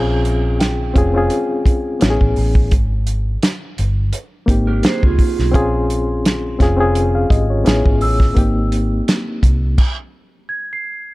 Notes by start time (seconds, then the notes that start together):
Already playing: A#1 C4 C#4 F4 G#4
0.25 closed hi-hat
0.60 G5, snare, closed hi-hat
0.94 F1 C4 C#4 F4 G#4, kick, closed hi-hat
1.13 C4 C#4 F4
1.18 G#4
1.30 closed hi-hat
1.66 kick, closed hi-hat
2.00 A1 B3 C#4 E4 F#4, snare, closed hi-hat
2.10 G#4
2.21 A1, kick
2.36 A1, open hi-hat
2.55 kick
2.71 G#1, kick, closed hi-hat
3.07 closed hi-hat
3.43 snare, closed hi-hat
3.78 G1, closed hi-hat
4.13 closed hi-hat
4.46 G#1 A#3 C4 D#4, kick, closed hi-hat
4.50 G4
4.67 G4 A#4
4.83 G#4 C5, snare, closed hi-hat
5.03 C#2 F4 G#4, kick
5.19 kick, open hi-hat
5.39 B1, snare
5.51 A#1 C4 C#4 F4 C6, kick, closed hi-hat
5.56 G#4
5.90 closed hi-hat
6.25 snare, closed hi-hat
6.59 F1 C4 C#4 F4 G#4, kick, snare, closed hi-hat
6.77 C4 C#4 F4 G#4
6.95 closed hi-hat
7.15 G#4 F5
7.30 G#1 G4 D#5, kick, closed hi-hat
7.50 F4 C#5
7.64 A1 B3 C#4 E4 G#4, snare, closed hi-hat
7.86 G#1, kick
8.01 A1 E6, open hi-hat
8.20 kick, snare
8.35 G#1 A#3 C4 D#4 G4, kick, closed hi-hat
8.72 closed hi-hat
9.08 snare, closed hi-hat
9.43 C2, kick, closed hi-hat
9.78 kick, crash
10.49 G#6
10.73 C7